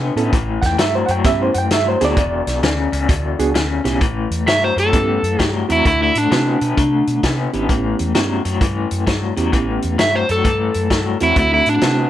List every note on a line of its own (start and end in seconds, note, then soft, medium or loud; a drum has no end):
0.00 0.14 D3 medium
0.00 0.14 B3 medium
0.16 0.29 A2 medium
0.16 0.31 D3 medium
0.16 0.31 B3 medium
0.16 0.32 B3 medium
0.16 0.31 C#4 medium
0.16 0.31 E4 medium
0.16 0.31 A4 medium
0.16 closed hi-hat medium
0.33 0.56 A1 medium
0.33 0.76 A2 medium
0.33 0.76 E3 medium
0.33 kick loud
0.33 closed hi-hat medium
0.62 0.75 E2 medium
0.62 0.65 F#5 medium
0.62 kick medium
0.62 snare soft
0.62 closed hi-hat medium
0.66 0.80 G5 loud
0.78 1.02 G2 medium
0.78 1.06 A2 medium
0.78 1.06 F#3 loud
0.78 0.95 E5 medium
0.78 snare medium
0.78 closed hi-hat medium
0.95 1.10 C5 medium
1.06 1.21 F#2 loud
1.06 1.23 A2 medium
1.06 1.24 F#3 medium
1.06 1.10 F#5 medium
1.06 closed hi-hat medium
1.11 1.25 G5 medium
1.24 1.48 G2 medium
1.24 1.68 A2 medium
1.24 1.68 E3 medium
1.24 1.52 B3 medium
1.24 1.52 C#4 medium
1.24 1.52 E4 medium
1.24 1.52 G4 medium
1.24 1.40 E5 loud
1.24 kick loud
1.24 snare soft
1.24 closed hi-hat medium
1.42 1.56 C5 medium
1.54 1.67 F#2 medium
1.54 1.58 F#5 medium
1.54 1.72 G5 loud
1.54 closed hi-hat medium
1.71 1.95 G2 medium
1.71 1.98 A2 medium
1.71 1.98 F#3 medium
1.71 1.87 E5 loud
1.71 snare loud
1.71 closed hi-hat medium
1.88 2.02 C5 loud
2.00 2.14 D2 medium
2.00 2.15 A2 medium
2.00 2.16 F#3 medium
2.00 2.15 B3 medium
2.00 2.15 D4 medium
2.00 2.15 F#4 medium
2.00 2.15 G#4 medium
2.00 snare soft
2.00 closed hi-hat medium
2.05 3.37 D5 loud
2.17 2.40 E1 loud
2.17 2.60 E2 medium
2.17 2.60 B2 medium
2.17 kick loud
2.17 closed hi-hat medium
2.46 2.59 B1 medium
2.46 snare soft
2.46 closed hi-hat medium
2.62 2.86 D2 medium
2.62 2.90 E2 medium
2.62 2.90 C#3 loud
2.62 snare loud
2.62 closed hi-hat medium
2.92 3.05 C#2 medium
2.92 3.07 E2 medium
2.92 3.08 C#3 medium
2.92 closed hi-hat medium
3.08 3.33 D2 medium
3.08 3.51 E2 medium
3.08 3.52 B2 loud
3.08 kick loud
3.08 closed hi-hat medium
3.38 3.51 C#2 medium
3.38 3.53 B3 medium
3.38 3.53 D4 medium
3.38 3.54 F#4 medium
3.38 3.54 G#4 medium
3.38 closed hi-hat medium
3.54 3.78 D2 medium
3.54 3.82 E2 medium
3.54 3.82 C#3 medium
3.54 snare loud
3.54 closed hi-hat medium
3.84 4.01 B1 medium
3.84 3.99 E2 medium
3.84 3.99 A2 medium
3.84 4.00 C#3 medium
3.84 3.99 B3 medium
3.84 3.99 C#4 medium
3.84 3.99 E4 medium
3.84 3.99 G4 medium
3.84 snare soft
3.84 closed hi-hat medium
4.01 4.25 A1 medium
4.01 4.44 A2 medium
4.01 4.44 E3 medium
4.01 kick loud
4.01 closed hi-hat medium
4.30 4.43 E2 medium
4.30 closed hi-hat medium
4.46 4.70 G2 medium
4.46 4.74 A2 medium
4.46 4.74 F#3 medium
4.46 4.63 E5 medium
4.46 snare loud
4.46 closed hi-hat medium
4.64 4.78 C5 medium
4.76 4.89 F#2 medium
4.76 4.91 A2 medium
4.76 4.91 F#3 medium
4.76 5.42 A4 medium
4.76 closed hi-hat medium
4.93 5.17 G2 medium
4.93 5.36 A2 medium
4.93 5.36 E3 medium
4.93 5.20 B3 medium
4.93 5.20 C#4 medium
4.93 5.20 E4 medium
4.93 5.20 G4 medium
4.93 kick loud
4.93 closed hi-hat medium
5.22 5.35 F#2 medium
5.22 closed hi-hat medium
5.39 5.63 G2 medium
5.39 5.66 A2 medium
5.39 5.66 F#3 medium
5.39 5.68 G4 medium
5.39 kick medium
5.39 snare medium
5.39 closed hi-hat medium
5.68 5.82 E2 medium
5.68 5.83 A2 medium
5.68 5.84 F#3 medium
5.68 5.83 A3 medium
5.68 5.83 C4 medium
5.68 5.83 E4 medium
5.68 5.86 E4 medium
5.68 5.83 F#4 medium
5.68 closed hi-hat medium
5.85 6.09 D2 medium
5.85 6.28 D3 medium
5.85 6.28 A3 medium
5.85 6.01 E4 medium
5.85 kick loud
5.85 closed hi-hat medium
6.03 6.17 E4 medium
6.15 6.28 A2 medium
6.15 7.51 D4 medium
6.15 closed hi-hat medium
6.31 6.55 C3 medium
6.31 6.58 D3 medium
6.31 6.58 A3 medium
6.31 6.58 B3 medium
6.31 6.58 C4 medium
6.31 6.58 E4 medium
6.31 6.58 F#4 medium
6.31 snare loud
6.31 closed hi-hat medium
6.61 6.74 B2 medium
6.61 6.76 D3 medium
6.61 6.76 B3 medium
6.61 closed hi-hat medium
6.77 7.01 C3 medium
6.77 7.20 D3 medium
6.77 7.20 A3 medium
6.77 kick loud
6.77 closed hi-hat medium
7.07 7.20 B2 medium
7.07 closed hi-hat medium
7.23 7.47 C3 medium
7.23 7.50 D3 medium
7.23 7.50 B3 medium
7.23 kick medium
7.23 snare medium
7.23 closed hi-hat medium
7.53 7.66 G#1 medium
7.53 7.68 D3 medium
7.53 8.12 B3 medium
7.53 7.68 B3 medium
7.53 8.12 C#4 medium
7.53 8.12 E4 soft
7.53 8.12 G4 medium
7.53 closed hi-hat soft
7.69 7.93 A1 medium
7.69 8.12 A2 medium
7.69 8.12 E3 medium
7.69 kick medium
7.69 closed hi-hat medium
7.99 8.12 E2 medium
7.99 closed hi-hat medium
8.15 8.39 G2 medium
8.15 8.42 A2 medium
8.15 8.42 F#3 medium
8.15 8.42 B3 medium
8.15 8.42 C#4 medium
8.15 8.42 E4 medium
8.15 8.42 G4 medium
8.15 snare medium
8.15 closed hi-hat medium
8.45 8.58 F#2 medium
8.45 8.59 A2 medium
8.45 8.59 F#3 medium
8.45 closed hi-hat medium
8.61 8.84 G2 medium
8.61 9.04 A2 medium
8.61 9.04 E3 medium
8.61 kick loud
8.61 closed hi-hat medium
8.91 9.04 F#2 medium
8.91 closed hi-hat medium
9.07 9.30 G2 medium
9.07 9.33 A2 medium
9.07 9.34 F#3 medium
9.07 kick medium
9.07 snare medium
9.07 closed hi-hat medium
9.36 9.50 E2 medium
9.36 9.51 A2 medium
9.36 9.51 F#3 medium
9.36 9.95 B3 medium
9.36 9.96 C#4 medium
9.36 9.95 E4 medium
9.36 9.96 G4 medium
9.36 closed hi-hat medium
9.52 9.76 A1 medium
9.52 9.95 A2 medium
9.52 9.95 E3 medium
9.52 kick medium
9.52 closed hi-hat medium
9.82 9.96 E2 medium
9.82 closed hi-hat medium
9.98 10.23 G2 medium
9.98 10.25 A2 medium
9.98 10.26 F#3 medium
9.98 10.15 E5 medium
9.98 snare loud
9.98 closed hi-hat medium
10.16 10.30 C5 medium
10.29 10.42 F#2 medium
10.29 10.43 A2 medium
10.29 10.43 F#3 medium
10.29 11.19 A4 medium
10.29 closed hi-hat medium
10.44 10.68 G2 medium
10.44 10.87 A2 medium
10.44 10.87 E3 medium
10.44 kick loud
10.44 closed hi-hat medium
10.74 10.87 F#2 medium
10.74 closed hi-hat medium
10.90 11.14 G2 medium
10.90 11.17 A2 medium
10.90 11.17 F#3 medium
10.90 kick medium
10.90 snare medium
10.90 closed hi-hat medium
11.20 11.33 E2 medium
11.20 11.35 A2 medium
11.20 11.35 F#3 medium
11.20 11.79 A3 medium
11.20 11.79 C4 medium
11.20 11.79 E4 medium
11.20 11.37 E4 medium
11.20 11.79 F#4 medium
11.20 closed hi-hat medium
11.36 11.60 D2 medium
11.36 11.79 D3 medium
11.36 11.79 A3 medium
11.36 11.52 E4 medium
11.36 kick loud
11.36 closed hi-hat medium
11.54 11.68 E4 medium
11.66 11.79 A2 medium
11.66 12.10 D4 medium
11.66 closed hi-hat soft
11.81 12.06 C3 medium
11.81 12.09 D3 medium
11.81 12.10 A3 medium
11.81 12.09 B3 medium
11.81 12.10 C4 medium
11.81 12.10 E4 medium
11.81 12.10 F#4 medium
11.81 snare medium
11.81 closed hi-hat medium